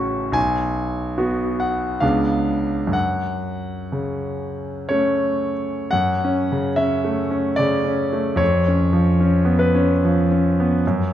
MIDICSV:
0, 0, Header, 1, 2, 480
1, 0, Start_track
1, 0, Key_signature, 3, "minor"
1, 0, Tempo, 825309
1, 208, Time_signature, 3, 2, 24, 8
1, 1175, Tempo, 911854
1, 1655, Tempo, 977199
1, 2615, Tempo, 1034483
1, 3095, Tempo, 860832
1, 3575, Tempo, 808625
1, 6156, End_track
2, 0, Start_track
2, 0, Title_t, "Grand piano"
2, 0, Program_c, 0, 0
2, 0, Control_c, 0, 64, 127
2, 0, Note_on_c, 0, 33, 49
2, 0, Note_on_c, 0, 49, 39
2, 0, Note_on_c, 0, 61, 40
2, 0, Note_on_c, 0, 66, 40
2, 0, Note_on_c, 0, 85, 60
2, 168, Note_off_c, 0, 33, 0
2, 185, Note_on_c, 0, 35, 45
2, 191, Note_off_c, 0, 61, 0
2, 191, Note_off_c, 0, 66, 0
2, 194, Note_on_c, 0, 80, 67
2, 219, Control_c, 0, 64, 0
2, 220, Note_off_c, 0, 85, 0
2, 223, Note_off_c, 0, 49, 0
2, 310, Control_c, 0, 64, 127
2, 685, Note_on_c, 0, 66, 39
2, 690, Note_on_c, 0, 59, 34
2, 921, Note_off_c, 0, 80, 0
2, 929, Note_on_c, 0, 78, 48
2, 1139, Note_off_c, 0, 35, 0
2, 1151, Note_off_c, 0, 66, 0
2, 1154, Note_off_c, 0, 59, 0
2, 1165, Note_on_c, 0, 77, 57
2, 1172, Note_on_c, 0, 37, 45
2, 1172, Note_on_c, 0, 59, 34
2, 1172, Note_on_c, 0, 62, 35
2, 1174, Note_on_c, 0, 49, 35
2, 1175, Note_off_c, 0, 78, 0
2, 1185, Control_c, 0, 64, 0
2, 1278, Control_c, 0, 64, 127
2, 1624, Note_on_c, 0, 42, 38
2, 1634, Note_off_c, 0, 49, 0
2, 1635, Note_off_c, 0, 59, 0
2, 1637, Note_off_c, 0, 62, 0
2, 1639, Note_off_c, 0, 37, 0
2, 1651, Note_off_c, 0, 77, 0
2, 1654, Note_on_c, 0, 78, 52
2, 1665, Control_c, 0, 64, 0
2, 1777, Control_c, 0, 64, 127
2, 2142, Note_on_c, 0, 49, 33
2, 2614, Note_off_c, 0, 78, 0
2, 2615, Note_on_c, 0, 73, 58
2, 2622, Note_on_c, 0, 61, 35
2, 2624, Note_on_c, 0, 57, 32
2, 2909, Note_off_c, 0, 49, 0
2, 3062, Note_off_c, 0, 42, 0
2, 3080, Note_off_c, 0, 61, 0
2, 3081, Note_off_c, 0, 57, 0
2, 3088, Note_on_c, 0, 78, 64
2, 3095, Note_off_c, 0, 73, 0
2, 3098, Note_on_c, 0, 42, 41
2, 3104, Control_c, 0, 64, 0
2, 3196, Control_c, 0, 64, 127
2, 3274, Note_on_c, 0, 61, 37
2, 3427, Note_on_c, 0, 49, 36
2, 3519, Note_off_c, 0, 61, 0
2, 3564, Note_on_c, 0, 76, 60
2, 3569, Note_on_c, 0, 61, 36
2, 3570, Note_off_c, 0, 78, 0
2, 3676, Note_off_c, 0, 49, 0
2, 3731, Note_on_c, 0, 57, 37
2, 3828, Note_off_c, 0, 61, 0
2, 3888, Note_on_c, 0, 61, 40
2, 3986, Note_off_c, 0, 57, 0
2, 4038, Note_on_c, 0, 74, 65
2, 4045, Note_off_c, 0, 76, 0
2, 4054, Note_on_c, 0, 49, 37
2, 4144, Note_off_c, 0, 61, 0
2, 4204, Note_on_c, 0, 61, 36
2, 4312, Note_off_c, 0, 49, 0
2, 4374, Note_on_c, 0, 57, 35
2, 4470, Note_off_c, 0, 61, 0
2, 4511, Note_on_c, 0, 41, 45
2, 4518, Note_off_c, 0, 42, 0
2, 4518, Note_on_c, 0, 73, 62
2, 4533, Note_off_c, 0, 74, 0
2, 4538, Note_off_c, 0, 57, 0
2, 4548, Control_c, 0, 64, 0
2, 4657, Control_c, 0, 64, 127
2, 4700, Note_on_c, 0, 61, 38
2, 4849, Note_on_c, 0, 53, 37
2, 4950, Note_off_c, 0, 61, 0
2, 5012, Note_on_c, 0, 61, 37
2, 5102, Note_off_c, 0, 53, 0
2, 5159, Note_on_c, 0, 59, 36
2, 5239, Note_off_c, 0, 73, 0
2, 5241, Note_on_c, 0, 71, 57
2, 5266, Note_off_c, 0, 61, 0
2, 5338, Note_on_c, 0, 61, 42
2, 5424, Note_off_c, 0, 59, 0
2, 5491, Note_off_c, 0, 71, 0
2, 5513, Note_on_c, 0, 53, 40
2, 5597, Note_off_c, 0, 61, 0
2, 5672, Note_on_c, 0, 61, 36
2, 5764, Note_off_c, 0, 53, 0
2, 5841, Note_on_c, 0, 59, 39
2, 5920, Note_off_c, 0, 61, 0
2, 5939, Note_off_c, 0, 41, 0
2, 5986, Control_c, 0, 64, 0
2, 5988, Note_off_c, 0, 59, 0
2, 6003, Note_on_c, 0, 42, 46
2, 6077, Control_c, 0, 64, 127
2, 6156, Note_off_c, 0, 42, 0
2, 6156, End_track
0, 0, End_of_file